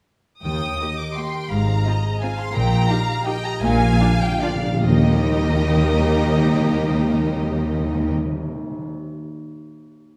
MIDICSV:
0, 0, Header, 1, 8, 480
1, 0, Start_track
1, 0, Key_signature, -3, "major"
1, 0, Tempo, 347826
1, 614, Time_signature, 3, 2, 24, 8
1, 3995, Tempo, 371287
1, 5435, Tempo, 418702
1, 9275, Tempo, 388601
1, 12747, End_track
2, 0, Start_track
2, 0, Title_t, "Violin section"
2, 0, Program_c, 0, 48
2, 602, Note_on_c, 0, 87, 69
2, 1310, Note_off_c, 0, 87, 0
2, 1355, Note_on_c, 0, 86, 65
2, 1610, Note_off_c, 0, 86, 0
2, 1616, Note_on_c, 0, 84, 63
2, 2076, Note_on_c, 0, 82, 74
2, 2086, Note_off_c, 0, 84, 0
2, 3050, Note_on_c, 0, 80, 67
2, 3052, Note_off_c, 0, 82, 0
2, 3288, Note_off_c, 0, 80, 0
2, 3293, Note_on_c, 0, 84, 77
2, 3507, Note_on_c, 0, 82, 84
2, 3522, Note_off_c, 0, 84, 0
2, 4470, Note_off_c, 0, 82, 0
2, 4473, Note_on_c, 0, 79, 85
2, 4709, Note_on_c, 0, 82, 89
2, 4710, Note_off_c, 0, 79, 0
2, 4927, Note_on_c, 0, 80, 99
2, 4945, Note_off_c, 0, 82, 0
2, 5648, Note_off_c, 0, 80, 0
2, 5666, Note_on_c, 0, 79, 92
2, 5906, Note_off_c, 0, 79, 0
2, 5914, Note_on_c, 0, 77, 77
2, 6385, Note_off_c, 0, 77, 0
2, 6389, Note_on_c, 0, 75, 87
2, 10218, Note_off_c, 0, 75, 0
2, 12747, End_track
3, 0, Start_track
3, 0, Title_t, "Violin section"
3, 0, Program_c, 1, 48
3, 599, Note_on_c, 1, 79, 52
3, 1069, Note_off_c, 1, 79, 0
3, 1116, Note_on_c, 1, 75, 48
3, 1610, Note_off_c, 1, 75, 0
3, 1619, Note_on_c, 1, 79, 47
3, 2085, Note_on_c, 1, 77, 55
3, 2087, Note_off_c, 1, 79, 0
3, 2561, Note_off_c, 1, 77, 0
3, 2565, Note_on_c, 1, 75, 50
3, 3052, Note_on_c, 1, 77, 59
3, 3058, Note_off_c, 1, 75, 0
3, 3511, Note_on_c, 1, 79, 64
3, 3521, Note_off_c, 1, 77, 0
3, 3980, Note_off_c, 1, 79, 0
3, 4003, Note_on_c, 1, 77, 62
3, 4457, Note_on_c, 1, 75, 66
3, 4482, Note_off_c, 1, 77, 0
3, 4938, Note_off_c, 1, 75, 0
3, 4946, Note_on_c, 1, 77, 80
3, 5907, Note_on_c, 1, 74, 62
3, 5908, Note_off_c, 1, 77, 0
3, 6149, Note_off_c, 1, 74, 0
3, 6379, Note_on_c, 1, 67, 69
3, 6387, Note_on_c, 1, 70, 67
3, 10212, Note_off_c, 1, 67, 0
3, 10216, Note_off_c, 1, 70, 0
3, 12747, End_track
4, 0, Start_track
4, 0, Title_t, "Harp"
4, 0, Program_c, 2, 46
4, 611, Note_on_c, 2, 51, 45
4, 853, Note_on_c, 2, 63, 35
4, 1107, Note_on_c, 2, 67, 38
4, 1366, Note_on_c, 2, 70, 38
4, 1610, Note_on_c, 2, 75, 35
4, 1843, Note_off_c, 2, 70, 0
4, 1859, Note_on_c, 2, 70, 39
4, 2081, Note_on_c, 2, 44, 47
4, 2100, Note_off_c, 2, 75, 0
4, 2102, Note_off_c, 2, 67, 0
4, 2103, Note_off_c, 2, 51, 0
4, 2104, Note_off_c, 2, 63, 0
4, 2106, Note_off_c, 2, 70, 0
4, 2312, Note_on_c, 2, 60, 39
4, 2562, Note_on_c, 2, 65, 43
4, 2804, Note_on_c, 2, 68, 43
4, 3060, Note_on_c, 2, 72, 45
4, 3278, Note_off_c, 2, 68, 0
4, 3295, Note_on_c, 2, 68, 47
4, 3522, Note_on_c, 2, 46, 57
4, 3539, Note_off_c, 2, 44, 0
4, 3539, Note_off_c, 2, 60, 0
4, 3541, Note_off_c, 2, 68, 0
4, 3542, Note_off_c, 2, 65, 0
4, 3543, Note_off_c, 2, 72, 0
4, 3744, Note_on_c, 2, 58, 45
4, 3995, Note_on_c, 2, 63, 53
4, 4234, Note_on_c, 2, 67, 57
4, 4473, Note_on_c, 2, 70, 53
4, 4703, Note_off_c, 2, 67, 0
4, 4719, Note_on_c, 2, 67, 55
4, 4928, Note_off_c, 2, 46, 0
4, 4944, Note_on_c, 2, 46, 66
4, 4967, Note_off_c, 2, 63, 0
4, 4968, Note_off_c, 2, 67, 0
4, 5165, Note_off_c, 2, 58, 0
4, 5181, Note_on_c, 2, 58, 49
4, 5431, Note_on_c, 2, 62, 56
4, 5666, Note_on_c, 2, 65, 61
4, 5889, Note_off_c, 2, 70, 0
4, 5903, Note_on_c, 2, 70, 50
4, 6131, Note_off_c, 2, 65, 0
4, 6145, Note_on_c, 2, 65, 50
4, 6381, Note_on_c, 2, 51, 53
4, 6398, Note_off_c, 2, 62, 0
4, 6398, Note_off_c, 2, 65, 0
4, 6399, Note_off_c, 2, 46, 0
4, 6445, Note_off_c, 2, 58, 0
4, 6459, Note_on_c, 2, 58, 51
4, 6543, Note_on_c, 2, 63, 53
4, 6619, Note_on_c, 2, 67, 50
4, 6700, Note_on_c, 2, 75, 52
4, 9291, Note_off_c, 2, 70, 0
4, 11078, Note_off_c, 2, 51, 0
4, 11120, Note_off_c, 2, 58, 0
4, 11165, Note_off_c, 2, 63, 0
4, 11206, Note_off_c, 2, 67, 0
4, 11250, Note_off_c, 2, 75, 0
4, 12747, End_track
5, 0, Start_track
5, 0, Title_t, "Viola section"
5, 0, Program_c, 3, 48
5, 1105, Note_on_c, 3, 58, 38
5, 1107, Note_on_c, 3, 67, 38
5, 1216, Note_off_c, 3, 58, 0
5, 1218, Note_off_c, 3, 67, 0
5, 1618, Note_on_c, 3, 58, 37
5, 1618, Note_on_c, 3, 67, 38
5, 1728, Note_off_c, 3, 67, 0
5, 1729, Note_off_c, 3, 58, 0
5, 2565, Note_on_c, 3, 65, 44
5, 2567, Note_on_c, 3, 60, 44
5, 2676, Note_off_c, 3, 65, 0
5, 2677, Note_off_c, 3, 60, 0
5, 3066, Note_on_c, 3, 60, 42
5, 3066, Note_on_c, 3, 65, 45
5, 3176, Note_off_c, 3, 60, 0
5, 3176, Note_off_c, 3, 65, 0
5, 4001, Note_on_c, 3, 63, 57
5, 4001, Note_on_c, 3, 67, 50
5, 4104, Note_off_c, 3, 67, 0
5, 4105, Note_off_c, 3, 63, 0
5, 4463, Note_on_c, 3, 63, 57
5, 4471, Note_on_c, 3, 67, 55
5, 4566, Note_off_c, 3, 63, 0
5, 4574, Note_off_c, 3, 67, 0
5, 5430, Note_on_c, 3, 65, 59
5, 5434, Note_on_c, 3, 62, 62
5, 5522, Note_off_c, 3, 65, 0
5, 5526, Note_off_c, 3, 62, 0
5, 5903, Note_on_c, 3, 65, 54
5, 5906, Note_on_c, 3, 62, 52
5, 5994, Note_off_c, 3, 65, 0
5, 5998, Note_off_c, 3, 62, 0
5, 6385, Note_on_c, 3, 63, 70
5, 6388, Note_on_c, 3, 58, 68
5, 10216, Note_off_c, 3, 63, 0
5, 10217, Note_off_c, 3, 58, 0
5, 12747, End_track
6, 0, Start_track
6, 0, Title_t, "Timpani"
6, 0, Program_c, 4, 47
6, 4938, Note_on_c, 4, 46, 30
6, 5019, Note_off_c, 4, 46, 0
6, 5035, Note_on_c, 4, 46, 31
6, 5119, Note_off_c, 4, 46, 0
6, 5135, Note_on_c, 4, 46, 38
6, 5222, Note_off_c, 4, 46, 0
6, 5238, Note_on_c, 4, 46, 37
6, 5325, Note_off_c, 4, 46, 0
6, 5341, Note_on_c, 4, 46, 44
6, 5439, Note_off_c, 4, 46, 0
6, 5452, Note_on_c, 4, 46, 49
6, 5539, Note_off_c, 4, 46, 0
6, 5553, Note_on_c, 4, 46, 48
6, 5634, Note_off_c, 4, 46, 0
6, 5648, Note_on_c, 4, 46, 48
6, 5747, Note_off_c, 4, 46, 0
6, 5761, Note_on_c, 4, 46, 58
6, 5852, Note_off_c, 4, 46, 0
6, 5866, Note_on_c, 4, 46, 65
6, 5955, Note_off_c, 4, 46, 0
6, 5969, Note_on_c, 4, 46, 72
6, 6049, Note_off_c, 4, 46, 0
6, 6063, Note_on_c, 4, 46, 76
6, 6153, Note_off_c, 4, 46, 0
6, 6167, Note_on_c, 4, 46, 84
6, 6252, Note_off_c, 4, 46, 0
6, 6266, Note_on_c, 4, 46, 90
6, 6356, Note_off_c, 4, 46, 0
6, 6391, Note_on_c, 4, 51, 64
6, 6477, Note_off_c, 4, 51, 0
6, 6478, Note_on_c, 4, 51, 60
6, 6564, Note_off_c, 4, 51, 0
6, 6580, Note_on_c, 4, 51, 69
6, 6666, Note_off_c, 4, 51, 0
6, 6672, Note_on_c, 4, 51, 60
6, 6758, Note_off_c, 4, 51, 0
6, 6762, Note_on_c, 4, 51, 68
6, 6848, Note_off_c, 4, 51, 0
6, 6850, Note_on_c, 4, 51, 64
6, 6936, Note_off_c, 4, 51, 0
6, 6937, Note_on_c, 4, 51, 68
6, 7020, Note_off_c, 4, 51, 0
6, 7020, Note_on_c, 4, 51, 64
6, 7106, Note_off_c, 4, 51, 0
6, 7111, Note_on_c, 4, 51, 66
6, 7195, Note_off_c, 4, 51, 0
6, 7195, Note_on_c, 4, 51, 64
6, 7278, Note_off_c, 4, 51, 0
6, 7278, Note_on_c, 4, 51, 71
6, 7357, Note_off_c, 4, 51, 0
6, 7357, Note_on_c, 4, 51, 62
6, 7443, Note_off_c, 4, 51, 0
6, 7444, Note_on_c, 4, 51, 65
6, 7530, Note_off_c, 4, 51, 0
6, 7538, Note_on_c, 4, 51, 60
6, 7620, Note_off_c, 4, 51, 0
6, 7620, Note_on_c, 4, 51, 66
6, 7706, Note_off_c, 4, 51, 0
6, 7709, Note_on_c, 4, 51, 60
6, 7795, Note_off_c, 4, 51, 0
6, 7803, Note_on_c, 4, 51, 68
6, 7889, Note_off_c, 4, 51, 0
6, 7889, Note_on_c, 4, 51, 62
6, 7975, Note_off_c, 4, 51, 0
6, 7977, Note_on_c, 4, 51, 76
6, 8060, Note_off_c, 4, 51, 0
6, 8060, Note_on_c, 4, 51, 68
6, 8146, Note_off_c, 4, 51, 0
6, 8150, Note_on_c, 4, 51, 67
6, 8236, Note_off_c, 4, 51, 0
6, 8238, Note_on_c, 4, 51, 60
6, 8324, Note_off_c, 4, 51, 0
6, 8329, Note_on_c, 4, 51, 70
6, 8406, Note_off_c, 4, 51, 0
6, 8406, Note_on_c, 4, 51, 63
6, 8492, Note_off_c, 4, 51, 0
6, 8494, Note_on_c, 4, 51, 65
6, 8578, Note_off_c, 4, 51, 0
6, 8578, Note_on_c, 4, 51, 61
6, 8664, Note_off_c, 4, 51, 0
6, 8667, Note_on_c, 4, 51, 64
6, 8753, Note_off_c, 4, 51, 0
6, 8754, Note_on_c, 4, 51, 66
6, 8834, Note_off_c, 4, 51, 0
6, 8834, Note_on_c, 4, 51, 67
6, 8920, Note_off_c, 4, 51, 0
6, 8926, Note_on_c, 4, 51, 64
6, 9012, Note_off_c, 4, 51, 0
6, 9013, Note_on_c, 4, 51, 67
6, 9099, Note_off_c, 4, 51, 0
6, 9103, Note_on_c, 4, 51, 61
6, 9185, Note_off_c, 4, 51, 0
6, 9185, Note_on_c, 4, 51, 72
6, 9271, Note_off_c, 4, 51, 0
6, 9276, Note_on_c, 4, 51, 66
6, 9365, Note_off_c, 4, 51, 0
6, 9365, Note_on_c, 4, 51, 69
6, 9456, Note_off_c, 4, 51, 0
6, 9456, Note_on_c, 4, 51, 67
6, 9544, Note_off_c, 4, 51, 0
6, 9544, Note_on_c, 4, 51, 66
6, 9637, Note_off_c, 4, 51, 0
6, 9640, Note_on_c, 4, 51, 62
6, 9730, Note_off_c, 4, 51, 0
6, 9730, Note_on_c, 4, 51, 75
6, 9817, Note_off_c, 4, 51, 0
6, 9817, Note_on_c, 4, 51, 64
6, 9909, Note_off_c, 4, 51, 0
6, 9909, Note_on_c, 4, 51, 68
6, 10001, Note_off_c, 4, 51, 0
6, 10008, Note_on_c, 4, 51, 64
6, 10101, Note_off_c, 4, 51, 0
6, 10101, Note_on_c, 4, 51, 61
6, 10192, Note_off_c, 4, 51, 0
6, 10192, Note_on_c, 4, 51, 65
6, 10281, Note_off_c, 4, 51, 0
6, 10281, Note_on_c, 4, 51, 68
6, 10374, Note_off_c, 4, 51, 0
6, 10375, Note_on_c, 4, 51, 61
6, 10465, Note_off_c, 4, 51, 0
6, 10465, Note_on_c, 4, 51, 68
6, 10558, Note_off_c, 4, 51, 0
6, 10563, Note_on_c, 4, 51, 63
6, 10655, Note_off_c, 4, 51, 0
6, 10659, Note_on_c, 4, 51, 62
6, 10751, Note_off_c, 4, 51, 0
6, 10752, Note_on_c, 4, 51, 66
6, 10845, Note_off_c, 4, 51, 0
6, 10849, Note_on_c, 4, 51, 63
6, 10942, Note_off_c, 4, 51, 0
6, 10944, Note_on_c, 4, 51, 65
6, 11037, Note_off_c, 4, 51, 0
6, 11040, Note_on_c, 4, 51, 64
6, 11132, Note_off_c, 4, 51, 0
6, 12747, End_track
7, 0, Start_track
7, 0, Title_t, "Cello section"
7, 0, Program_c, 5, 48
7, 609, Note_on_c, 5, 39, 50
7, 1022, Note_off_c, 5, 39, 0
7, 2089, Note_on_c, 5, 44, 51
7, 2481, Note_off_c, 5, 44, 0
7, 3520, Note_on_c, 5, 46, 65
7, 3911, Note_off_c, 5, 46, 0
7, 4942, Note_on_c, 5, 46, 81
7, 5347, Note_off_c, 5, 46, 0
7, 6383, Note_on_c, 5, 39, 67
7, 10214, Note_off_c, 5, 39, 0
7, 12747, End_track
8, 0, Start_track
8, 0, Title_t, "Double bass section"
8, 0, Program_c, 6, 48
8, 599, Note_on_c, 6, 39, 51
8, 1017, Note_off_c, 6, 39, 0
8, 2080, Note_on_c, 6, 32, 56
8, 2476, Note_off_c, 6, 32, 0
8, 3512, Note_on_c, 6, 34, 66
8, 3907, Note_off_c, 6, 34, 0
8, 4932, Note_on_c, 6, 34, 81
8, 5342, Note_off_c, 6, 34, 0
8, 6382, Note_on_c, 6, 39, 71
8, 10214, Note_off_c, 6, 39, 0
8, 12747, End_track
0, 0, End_of_file